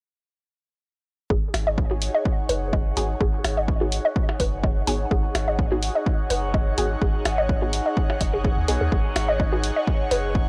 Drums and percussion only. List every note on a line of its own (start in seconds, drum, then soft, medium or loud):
1.30 kick loud
1.54 open hi-hat medium
1.54 percussion blips medium
1.78 kick loud
2.02 open hi-hat medium
2.25 kick loud
2.49 open hi-hat medium
2.73 kick loud
2.97 open hi-hat medium
3.21 kick loud
3.45 open hi-hat medium
3.45 percussion blips medium
3.68 kick loud
3.92 open hi-hat medium
4.16 kick loud
4.29 percussion blips medium
4.40 kick medium
4.40 open hi-hat medium
4.63 kick loud
4.87 open hi-hat medium
5.11 kick loud
5.35 open hi-hat medium
5.35 percussion blips medium
5.59 kick loud
5.83 open hi-hat medium
6.06 kick loud
6.30 open hi-hat medium
6.54 kick loud
6.78 open hi-hat medium
7.02 kick loud
7.25 open hi-hat medium
7.25 percussion blips medium
7.49 kick loud
7.73 open hi-hat medium
7.97 kick loud
8.10 percussion blips medium
8.21 kick medium
8.21 open hi-hat medium
8.44 kick loud
8.68 open hi-hat medium
8.92 kick loud
9.16 open hi-hat medium
9.16 percussion blips medium
9.40 kick loud
9.63 open hi-hat medium
9.87 kick loud
10.11 open hi-hat medium
10.35 kick loud